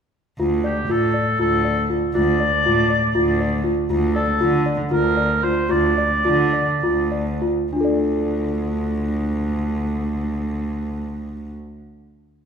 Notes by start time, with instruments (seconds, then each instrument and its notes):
0.39 cello D2, celesta F4
0.64 oboe G4, celesta D5
0.89 cello A2, celesta F4, oboe A4
1.14 celesta D5
1.39 cello D2, celesta F4, oboe A4
1.65 celesta D5
1.90 celesta F4
2.14 cello D2, celesta F4, oboe D5
2.40 celesta D5
2.65 cello A2, celesta F4
2.90 celesta D5
3.15 cello D2, celesta F4
3.40 celesta D5
3.64 celesta F4
3.90 cello D2, celesta F4
4.15 oboe A4, celesta D5
4.41 cello D3, celesta F4
4.66 celesta D5
4.91 cello D2, celesta F4, oboe A#4
5.17 celesta D5
5.44 celesta F4, oboe C5
5.69 cello D2, celesta F4, oboe D5
5.98 celesta D5
6.25 cello D3, celesta F4
6.53 celesta D5
6.83 cello D2, celesta F4
7.11 celesta D5
7.42 celesta F4
7.73 cello D2, celesta D4 F4
7.81 celesta A4 D5